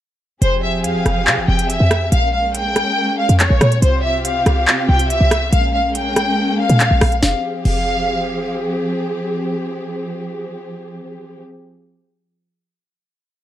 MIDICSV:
0, 0, Header, 1, 5, 480
1, 0, Start_track
1, 0, Key_signature, -4, "minor"
1, 0, Tempo, 425532
1, 473, Time_signature, 4, 2, 24, 8
1, 15154, End_track
2, 0, Start_track
2, 0, Title_t, "Violin section"
2, 0, Program_c, 0, 48
2, 475, Note_on_c, 0, 72, 107
2, 656, Note_off_c, 0, 72, 0
2, 712, Note_on_c, 0, 76, 80
2, 894, Note_off_c, 0, 76, 0
2, 952, Note_on_c, 0, 77, 83
2, 1629, Note_off_c, 0, 77, 0
2, 1670, Note_on_c, 0, 79, 79
2, 1852, Note_off_c, 0, 79, 0
2, 1914, Note_on_c, 0, 76, 82
2, 2365, Note_off_c, 0, 76, 0
2, 2391, Note_on_c, 0, 77, 106
2, 2573, Note_off_c, 0, 77, 0
2, 2633, Note_on_c, 0, 77, 81
2, 2815, Note_off_c, 0, 77, 0
2, 2881, Note_on_c, 0, 79, 97
2, 3553, Note_off_c, 0, 79, 0
2, 3592, Note_on_c, 0, 77, 83
2, 3773, Note_off_c, 0, 77, 0
2, 3827, Note_on_c, 0, 73, 82
2, 4281, Note_off_c, 0, 73, 0
2, 4318, Note_on_c, 0, 72, 93
2, 4497, Note_off_c, 0, 72, 0
2, 4549, Note_on_c, 0, 76, 80
2, 4732, Note_off_c, 0, 76, 0
2, 4794, Note_on_c, 0, 77, 80
2, 5470, Note_off_c, 0, 77, 0
2, 5509, Note_on_c, 0, 79, 85
2, 5692, Note_off_c, 0, 79, 0
2, 5746, Note_on_c, 0, 76, 95
2, 6200, Note_off_c, 0, 76, 0
2, 6233, Note_on_c, 0, 77, 101
2, 6415, Note_off_c, 0, 77, 0
2, 6473, Note_on_c, 0, 77, 78
2, 6654, Note_off_c, 0, 77, 0
2, 6715, Note_on_c, 0, 79, 84
2, 7390, Note_off_c, 0, 79, 0
2, 7434, Note_on_c, 0, 77, 95
2, 8110, Note_off_c, 0, 77, 0
2, 8150, Note_on_c, 0, 77, 82
2, 8285, Note_off_c, 0, 77, 0
2, 8629, Note_on_c, 0, 77, 94
2, 9545, Note_off_c, 0, 77, 0
2, 15154, End_track
3, 0, Start_track
3, 0, Title_t, "String section"
3, 0, Program_c, 1, 48
3, 472, Note_on_c, 1, 53, 81
3, 472, Note_on_c, 1, 67, 78
3, 472, Note_on_c, 1, 68, 88
3, 473, Note_on_c, 1, 60, 73
3, 2373, Note_off_c, 1, 53, 0
3, 2373, Note_off_c, 1, 60, 0
3, 2373, Note_off_c, 1, 67, 0
3, 2373, Note_off_c, 1, 68, 0
3, 2392, Note_on_c, 1, 56, 83
3, 2392, Note_on_c, 1, 58, 74
3, 2392, Note_on_c, 1, 61, 89
3, 4293, Note_off_c, 1, 56, 0
3, 4293, Note_off_c, 1, 58, 0
3, 4293, Note_off_c, 1, 61, 0
3, 4311, Note_on_c, 1, 60, 74
3, 4312, Note_on_c, 1, 48, 81
3, 4312, Note_on_c, 1, 67, 94
3, 4313, Note_on_c, 1, 65, 75
3, 6212, Note_off_c, 1, 60, 0
3, 6213, Note_off_c, 1, 48, 0
3, 6213, Note_off_c, 1, 65, 0
3, 6213, Note_off_c, 1, 67, 0
3, 6232, Note_on_c, 1, 58, 73
3, 6233, Note_on_c, 1, 56, 81
3, 6233, Note_on_c, 1, 61, 89
3, 8133, Note_off_c, 1, 56, 0
3, 8133, Note_off_c, 1, 58, 0
3, 8133, Note_off_c, 1, 61, 0
3, 8151, Note_on_c, 1, 60, 75
3, 8151, Note_on_c, 1, 68, 91
3, 8152, Note_on_c, 1, 53, 79
3, 8152, Note_on_c, 1, 67, 74
3, 12849, Note_off_c, 1, 53, 0
3, 12849, Note_off_c, 1, 60, 0
3, 12849, Note_off_c, 1, 67, 0
3, 12849, Note_off_c, 1, 68, 0
3, 15154, End_track
4, 0, Start_track
4, 0, Title_t, "808-style bass"
4, 0, Program_c, 2, 38
4, 470, Note_on_c, 2, 29, 108
4, 951, Note_on_c, 2, 41, 95
4, 968, Note_off_c, 2, 29, 0
4, 1071, Note_on_c, 2, 29, 99
4, 1088, Note_off_c, 2, 41, 0
4, 1186, Note_off_c, 2, 29, 0
4, 1192, Note_on_c, 2, 29, 110
4, 1432, Note_on_c, 2, 48, 100
4, 1449, Note_off_c, 2, 29, 0
4, 1551, Note_on_c, 2, 29, 98
4, 1568, Note_off_c, 2, 48, 0
4, 1666, Note_off_c, 2, 29, 0
4, 1672, Note_on_c, 2, 29, 109
4, 2018, Note_off_c, 2, 29, 0
4, 2033, Note_on_c, 2, 41, 104
4, 2378, Note_off_c, 2, 41, 0
4, 2392, Note_on_c, 2, 34, 113
4, 3199, Note_off_c, 2, 34, 0
4, 3713, Note_on_c, 2, 41, 107
4, 3943, Note_off_c, 2, 41, 0
4, 3952, Note_on_c, 2, 34, 104
4, 4065, Note_off_c, 2, 34, 0
4, 4072, Note_on_c, 2, 46, 105
4, 4302, Note_off_c, 2, 46, 0
4, 4312, Note_on_c, 2, 36, 114
4, 5003, Note_off_c, 2, 36, 0
4, 5031, Note_on_c, 2, 36, 107
4, 5262, Note_off_c, 2, 36, 0
4, 5512, Note_on_c, 2, 36, 110
4, 5858, Note_off_c, 2, 36, 0
4, 5872, Note_on_c, 2, 36, 103
4, 6218, Note_off_c, 2, 36, 0
4, 6233, Note_on_c, 2, 34, 114
4, 7508, Note_off_c, 2, 34, 0
4, 7553, Note_on_c, 2, 46, 101
4, 7783, Note_off_c, 2, 46, 0
4, 7793, Note_on_c, 2, 34, 106
4, 7908, Note_off_c, 2, 34, 0
4, 7913, Note_on_c, 2, 34, 107
4, 8143, Note_off_c, 2, 34, 0
4, 8153, Note_on_c, 2, 29, 111
4, 8286, Note_off_c, 2, 29, 0
4, 8632, Note_on_c, 2, 29, 110
4, 10027, Note_off_c, 2, 29, 0
4, 15154, End_track
5, 0, Start_track
5, 0, Title_t, "Drums"
5, 471, Note_on_c, 9, 42, 83
5, 584, Note_off_c, 9, 42, 0
5, 951, Note_on_c, 9, 42, 90
5, 1064, Note_off_c, 9, 42, 0
5, 1192, Note_on_c, 9, 42, 67
5, 1193, Note_on_c, 9, 37, 85
5, 1305, Note_off_c, 9, 42, 0
5, 1306, Note_off_c, 9, 37, 0
5, 1433, Note_on_c, 9, 39, 120
5, 1545, Note_off_c, 9, 39, 0
5, 1792, Note_on_c, 9, 42, 70
5, 1905, Note_off_c, 9, 42, 0
5, 1914, Note_on_c, 9, 42, 77
5, 2027, Note_off_c, 9, 42, 0
5, 2152, Note_on_c, 9, 37, 107
5, 2153, Note_on_c, 9, 42, 74
5, 2265, Note_off_c, 9, 37, 0
5, 2266, Note_off_c, 9, 42, 0
5, 2392, Note_on_c, 9, 42, 83
5, 2505, Note_off_c, 9, 42, 0
5, 2871, Note_on_c, 9, 42, 91
5, 2984, Note_off_c, 9, 42, 0
5, 3112, Note_on_c, 9, 37, 86
5, 3112, Note_on_c, 9, 42, 67
5, 3225, Note_off_c, 9, 37, 0
5, 3225, Note_off_c, 9, 42, 0
5, 3713, Note_on_c, 9, 42, 70
5, 3826, Note_off_c, 9, 42, 0
5, 3833, Note_on_c, 9, 39, 123
5, 3834, Note_on_c, 9, 42, 77
5, 3946, Note_off_c, 9, 39, 0
5, 3947, Note_off_c, 9, 42, 0
5, 4072, Note_on_c, 9, 37, 101
5, 4073, Note_on_c, 9, 42, 65
5, 4185, Note_off_c, 9, 37, 0
5, 4186, Note_off_c, 9, 42, 0
5, 4194, Note_on_c, 9, 42, 63
5, 4307, Note_off_c, 9, 42, 0
5, 4313, Note_on_c, 9, 42, 83
5, 4426, Note_off_c, 9, 42, 0
5, 4792, Note_on_c, 9, 42, 94
5, 4905, Note_off_c, 9, 42, 0
5, 5033, Note_on_c, 9, 37, 88
5, 5033, Note_on_c, 9, 42, 68
5, 5146, Note_off_c, 9, 37, 0
5, 5146, Note_off_c, 9, 42, 0
5, 5274, Note_on_c, 9, 39, 121
5, 5387, Note_off_c, 9, 39, 0
5, 5633, Note_on_c, 9, 42, 67
5, 5746, Note_off_c, 9, 42, 0
5, 5756, Note_on_c, 9, 42, 78
5, 5868, Note_off_c, 9, 42, 0
5, 5992, Note_on_c, 9, 37, 101
5, 5994, Note_on_c, 9, 42, 73
5, 6105, Note_off_c, 9, 37, 0
5, 6107, Note_off_c, 9, 42, 0
5, 6233, Note_on_c, 9, 42, 81
5, 6346, Note_off_c, 9, 42, 0
5, 6712, Note_on_c, 9, 42, 94
5, 6825, Note_off_c, 9, 42, 0
5, 6952, Note_on_c, 9, 42, 68
5, 6953, Note_on_c, 9, 37, 89
5, 7065, Note_off_c, 9, 37, 0
5, 7065, Note_off_c, 9, 42, 0
5, 7552, Note_on_c, 9, 42, 68
5, 7665, Note_off_c, 9, 42, 0
5, 7672, Note_on_c, 9, 39, 119
5, 7674, Note_on_c, 9, 42, 79
5, 7785, Note_off_c, 9, 39, 0
5, 7787, Note_off_c, 9, 42, 0
5, 7911, Note_on_c, 9, 37, 101
5, 7912, Note_on_c, 9, 42, 77
5, 7913, Note_on_c, 9, 46, 57
5, 8024, Note_off_c, 9, 37, 0
5, 8025, Note_off_c, 9, 42, 0
5, 8025, Note_off_c, 9, 46, 0
5, 8032, Note_on_c, 9, 42, 44
5, 8144, Note_off_c, 9, 42, 0
5, 8151, Note_on_c, 9, 38, 87
5, 8264, Note_off_c, 9, 38, 0
5, 8632, Note_on_c, 9, 49, 92
5, 8745, Note_off_c, 9, 49, 0
5, 15154, End_track
0, 0, End_of_file